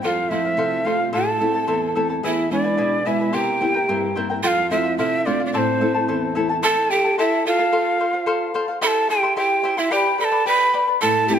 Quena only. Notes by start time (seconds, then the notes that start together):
0.02 G5
0.07 F5
0.29 E5
0.85 F5
1.13 A5
2.25 E5
2.52 D5
3.07 E5
3.34 G5
4.43 G5
4.47 F5
4.71 E5
4.98 E5
5.26 D5
5.46 D5
5.53 D5
5.58 C5
6.63 A5
6.90 G5
7.19 E5
7.48 F5
8.82 B5
8.87 A5
9.10 G5
9.37 G5
9.78 E5
9.92 G5
10.20 B5
10.24 A5
10.47 B5
11.02 A5
11.30 G5 A5